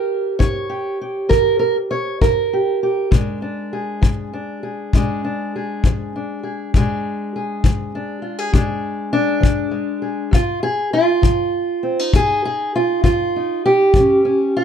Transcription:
0.00 0.68 G4 soft
0.00 0.38 A#4 loud
0.39 0.95 D#4 medium
0.39 1.29 C#5 loud
0.39 kick medium
0.69 1.00 G4 soft
1.01 2.52 G4 soft
1.29 1.84 D#3 medium
1.29 1.58 A#4 loud
1.29 kick medium
1.59 1.75 A#4 medium
1.91 2.21 C#5 medium
2.21 2.76 D#4 medium
2.21 3.72 A#4 medium
2.21 kick medium
2.53 2.82 G4 soft
2.83 3.09 G4 soft
3.11 3.66 A#2 medium
3.11 4.94 G#3 medium
3.11 3.42 D4 medium
3.11 kick medium
3.42 4.33 D4 soft
3.73 4.63 G#4 soft
4.01 4.56 F3 medium
4.01 kick medium
4.33 4.95 D4 soft
4.63 4.96 G#4 soft
4.93 5.48 A#2 medium
4.93 6.74 G#3 soft
4.93 5.23 D4 soft
4.93 5.54 G#4 soft
4.93 kick medium
5.24 6.14 D4 soft
5.56 6.42 G#4 soft
5.84 6.38 F3 medium
5.84 kick medium
6.16 6.71 D4 soft
6.43 6.70 G#4 soft
6.74 7.29 A#2 medium
6.74 8.52 G#3 medium
6.74 7.94 D4 medium
6.74 7.35 G#4 soft
6.74 kick medium
7.36 8.22 G#4 soft
7.64 8.18 F3 medium
7.64 kick medium
7.95 8.53 D4 soft
8.22 8.38 F4 soft
8.38 8.54 G#4 soft
8.53 9.07 A#2 medium
8.53 9.70 G#3 soft
8.53 9.12 D4 soft
8.53 10.01 G#4 soft
8.53 kick medium
9.13 10.33 D4 loud
9.40 9.96 F3 medium
9.40 kick medium
9.71 10.33 G#3 soft
10.02 10.29 G#4 soft
10.31 10.87 F2 medium
10.31 10.62 F4 loud
10.31 kick medium
10.63 10.93 G#4 loud
10.93 12.14 F4 loud
11.22 11.77 F3 medium
11.22 kick medium
11.83 11.99 C4 soft
11.99 13.34 D#4 soft
12.13 12.68 F2 medium
12.13 12.44 G#4 loud
12.13 kick medium
12.45 12.75 G#4 medium
12.76 13.03 F4 medium
13.03 13.57 F3 medium
13.03 13.64 F4 medium
13.03 kick medium
13.36 13.91 D#4 soft
13.66 14.54 G4 loud
13.94 14.48 D#3 medium
13.94 14.24 C#4 medium
13.94 kick medium
14.25 14.64 C#4 soft
14.57 14.64 F#4 loud

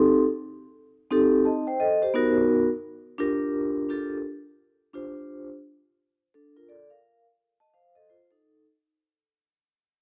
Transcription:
0.00 0.23 C4 medium
0.00 0.23 D#4 medium
0.00 0.24 G4 medium
0.00 0.27 A4 medium
1.10 1.63 C4 medium
1.10 1.63 D#4 medium
1.10 1.46 G4 medium
1.10 1.46 A4 medium
1.45 1.66 D#5 medium
1.45 1.66 A5 medium
1.67 1.80 C5 medium
1.67 1.80 G5 medium
1.80 2.01 A4 medium
1.80 2.01 D#5 medium
2.02 2.36 G4 medium
2.02 2.35 C5 medium
2.14 2.67 B3 medium
2.14 2.67 D#4 medium
2.14 2.67 F#4 medium
2.14 2.68 A#4 loud
3.18 3.88 D4 medium
3.18 3.88 F4 medium
3.18 3.89 G4 medium
3.18 4.19 A#4 loud
3.89 4.16 D4 medium
3.89 4.16 F4 medium
3.89 4.17 G4 medium
3.89 4.17 A4 loud
4.93 5.46 D4 medium
4.93 5.46 F4 medium
4.93 5.47 G4 medium
4.93 5.47 C5 medium
6.34 6.55 D4 medium
6.34 6.55 A4 medium
6.56 6.69 F4 medium
6.56 6.69 A#4 medium
6.69 6.90 A4 medium
6.69 6.89 D5 medium
6.90 7.24 A#4 soft
6.90 7.23 F5 medium
7.60 7.73 D#5 soft
7.60 7.73 A5 medium
7.74 7.94 C5 medium
7.74 7.94 F5 medium
7.95 8.08 A4 medium
7.95 8.08 D#5 medium
8.09 8.30 F4 medium
8.09 8.29 C5 medium
8.31 8.64 D#4 medium
8.31 8.63 A4 medium

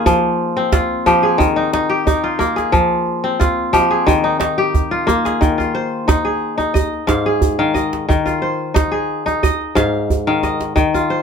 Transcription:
0.00 0.11 D#3 medium
0.00 1.66 A#3 medium
0.00 1.02 D#4 medium
0.00 0.72 F4 medium
0.00 1.12 G#4 medium
0.06 1.05 F3 medium
0.06 djembe bass medium
0.57 2.37 C4 medium
0.72 2.23 F4 medium
0.72 djembe slap medium
0.72 djembe bass medium
1.06 1.45 F3 medium
1.06 1.89 G4 medium
1.06 djembe tone medium
1.23 1.96 G#4 medium
1.38 2.78 D#3 medium
1.38 djembe bass medium
1.56 1.73 D#4 medium
1.73 2.06 D#4 medium
1.73 djembe slap medium
1.90 2.62 G4 medium
2.07 3.69 D#4 medium
2.07 djembe bass medium
2.24 3.39 F4 medium
2.39 4.32 A#3 medium
2.39 djembe tone medium
2.56 3.79 G#4 medium
2.56 djembe slap soft
2.72 3.72 F3 medium
2.72 djembe slap soft
2.72 djembe bass medium
3.07 djembe slap soft
3.24 5.04 C4 medium
3.24 djembe slap soft
3.40 4.91 F4 medium
3.40 djembe slap medium
3.40 djembe bass medium
3.73 4.12 F3 medium
3.73 4.58 G4 medium
3.73 djembe tone medium
3.91 4.64 G#4 medium
3.91 djembe slap soft
4.07 5.40 D#3 medium
4.07 djembe bass medium
4.24 4.39 D#4 medium
4.24 djembe slap soft
4.40 6.02 D#4 medium
4.40 djembe slap medium
4.58 5.31 G4 medium
4.75 djembe slap soft
4.75 djembe bass medium
4.91 5.58 F4 medium
4.91 djembe slap soft
5.07 7.00 A#3 medium
5.07 djembe slap soft
5.07 djembe tone medium
5.25 6.24 G#4 medium
5.25 djembe slap medium
5.41 6.80 D#3 medium
5.41 djembe slap soft
5.41 djembe bass medium
5.58 7.09 F4 medium
5.58 djembe tone medium
5.75 6.93 C5 medium
5.75 djembe slap soft
6.08 6.57 D#4 medium
6.08 djembe slap medium
6.08 djembe tone medium
6.08 djembe bass medium
6.25 7.26 G#4 medium
6.58 8.20 D#4 medium
6.58 djembe tone medium
6.74 7.74 D#5 medium
6.74 djembe bass medium
6.93 djembe slap soft
7.07 8.14 G#2 medium
7.07 7.58 F5 medium
7.07 djembe slap medium
7.07 djembe tone medium
7.26 8.62 G#4 medium
7.26 djembe slap soft
7.42 djembe bass medium
7.59 8.07 D#3 medium
7.59 8.59 F5 medium
7.74 8.81 D#5 medium
7.74 djembe tone medium
7.93 djembe slap medium
8.09 9.47 D#3 medium
8.09 djembe slap soft
8.09 djembe bass medium
8.26 9.77 F4 medium
8.26 djembe tone medium
8.42 9.61 C5 medium
8.42 djembe slap soft
8.74 9.25 D#4 medium
8.74 djembe slap medium
8.74 djembe tone medium
8.74 djembe bass medium
8.92 10.28 G#4 medium
9.26 10.88 D#4 medium
9.26 djembe tone medium
9.43 10.43 D#5 medium
9.43 djembe bass medium
9.61 djembe slap soft
9.75 10.81 G#2 medium
9.75 10.27 F5 medium
9.75 djembe slap medium
9.75 djembe tone medium
9.94 djembe slap soft
10.10 djembe bass medium
10.27 10.74 D#3 medium
10.27 11.22 F5 medium
10.43 11.22 D#5 medium
10.43 djembe tone medium
10.61 djembe slap medium
10.76 11.22 D#3 medium
10.76 djembe slap soft
10.76 djembe bass medium
10.94 11.22 F4 medium
10.94 djembe tone soft
11.10 11.22 C5 medium

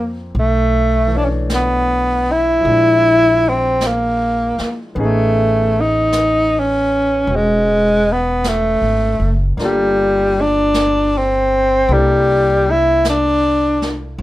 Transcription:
0.00 0.30 F2 medium
0.00 0.35 F3 soft
0.00 0.19 A#3 medium
0.00 0.34 A#3 soft
0.00 0.35 C4 soft
0.00 0.35 D4 medium
0.00 0.35 A4 soft
0.35 2.61 B1 medium
0.35 brush sweep soft
0.39 1.18 A3 medium
1.07 2.63 E3 soft
1.07 2.65 A3 soft
1.15 1.26 D4 medium
1.15 2.67 D4 medium
1.15 2.67 C#5 soft
1.25 1.27 C#4 medium
1.50 brush sweep soft
1.50 snare soft
1.50 hi-hat pedal soft
1.55 2.33 B3 medium
2.32 3.50 E4 medium
2.61 4.94 F3 soft
2.61 4.96 G#3 soft
2.65 4.54 A#1 medium
2.65 4.98 D4 soft
2.65 brush sweep soft
2.72 5.00 E4 soft
3.49 3.89 C4 medium
3.81 brush sweep soft
3.81 snare soft
3.81 hi-hat pedal medium
3.87 4.82 A#3 medium
4.58 muted upright bass stroke soft
4.58 snare soft
4.95 7.23 A1 medium
4.95 9.58 B3 medium
4.95 7.26 C#4 soft
4.95 brush sweep soft
4.99 9.60 D#4 soft
4.99 9.60 G#4 medium
5.04 5.82 A3 medium
5.81 6.60 D#4 medium
6.12 brush sweep soft
6.12 snare soft
6.12 hi-hat pedal medium
6.59 7.37 C#4 medium
7.27 8.77 E1 medium
7.27 9.58 C#4 soft
7.27 9.60 F#4 soft
7.27 brush sweep soft
7.36 8.13 G#3 medium
8.12 8.50 B3 medium
8.44 9.43 A3 medium
8.44 brush sweep soft
8.44 snare soft
8.44 hi-hat pedal medium
8.82 9.17 G#1 medium
9.20 9.56 F#1 medium
9.57 11.84 G1 medium
9.57 11.88 A#3 medium
9.57 11.89 D4 medium
9.57 11.90 F4 medium
9.57 brush sweep soft
9.57 snare soft
9.62 10.43 G3 medium
9.62 11.90 A4 medium
10.41 11.19 D4 medium
10.74 brush sweep soft
10.74 snare soft
10.74 hi-hat pedal medium
11.17 11.95 C4 medium
11.89 14.15 C2 medium
11.89 14.20 A#3 medium
11.89 14.20 D4 soft
11.89 14.20 E4 soft
11.89 14.20 A4 medium
11.89 brush sweep soft
11.93 12.72 G3 medium
12.71 13.06 E4 medium
13.05 brush sweep soft
13.05 snare soft
13.05 hi-hat pedal medium
13.09 14.00 D4 medium
13.82 snare soft
14.18 14.22 F2 medium

